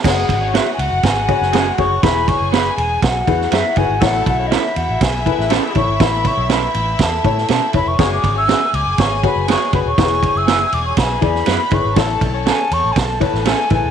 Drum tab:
CC |x---------------|----------------|----------------|----------------|
RD |--x-x-x-x-x-x-x-|x-x-x-x-x-x-x-x-|x-x-x-x-x-x-x-x-|x-x-x-x-x-x-x-x-|
SD |o---o---o--oo---|o---o---o--oo---|o---o---o--oo---|o---o---o--oo---|
BD |o-o-----o-o---o-|o-o-----o-o---o-|o-o-----o-o---o-|o-o-----o-o---o-|

CC |----------------|----------------|----------------|
RD |x-x-x-x-x-x-x-x-|x-x-x-x-x-x-x-x-|x-x-x-x-x-x-x-x-|
SD |o---o---o---o---|o---o---o--oo---|o---o---o--oo---|
BD |o-o-----o-o---o-|o-o-----o-o---o-|o-o-----o-o---o-|